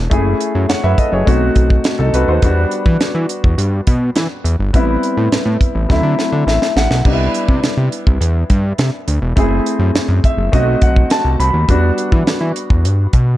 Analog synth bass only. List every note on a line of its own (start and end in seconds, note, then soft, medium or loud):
0.11 0.34 F#1 loud
0.55 0.66 F#2 loud
0.69 0.75 F#2 soft
0.84 0.95 F#2 medium
1.12 1.24 F#1 medium
1.27 1.50 B1 medium
1.56 1.79 B1 medium
1.99 2.11 C2 medium
2.13 2.25 C2 medium
2.28 2.40 D#2 medium
2.42 2.66 E2 loud
2.86 2.97 E3 loud
3.00 3.06 E3 soft
3.15 3.26 E3 medium
3.44 3.55 E2 medium
3.58 3.81 G2 medium
3.87 4.10 B2 medium
4.16 4.27 E3 medium
4.44 4.56 E2 medium
4.59 4.71 G1 medium
4.74 4.97 A1 medium
5.17 5.29 A2 medium
5.32 5.38 A2 soft
5.45 5.57 A2 medium
5.75 5.87 A1 medium
5.90 6.01 D2 medium
6.03 6.15 D3 loud
6.32 6.44 D3 medium
6.47 6.59 A1 medium
6.76 6.88 A1 medium
6.90 7.02 B1 medium
7.05 7.28 C2 loud
7.49 7.60 C3 medium
7.63 7.69 C3 soft
7.77 7.89 C3 medium
8.07 8.18 C2 medium
8.21 8.44 E2 medium
8.50 8.73 G2 medium
8.79 8.90 C3 medium
9.08 9.19 D2 medium
9.22 9.34 E1 medium
9.37 9.60 F#1 loud
9.79 9.91 F#2 medium
9.94 10.00 F#2 soft
10.08 10.20 F#2 medium
10.37 10.49 F#1 medium
10.53 10.76 B1 loud
10.82 11.05 B1 medium
11.24 11.36 C2 medium
11.39 11.51 C2 loud
11.54 11.65 D#2 medium
11.68 11.92 E2 loud
12.12 12.24 E3 medium
12.26 12.32 E3 soft
12.41 12.52 E3 medium
12.70 12.86 E2 medium
12.84 13.07 G2 medium
13.13 13.36 B2 medium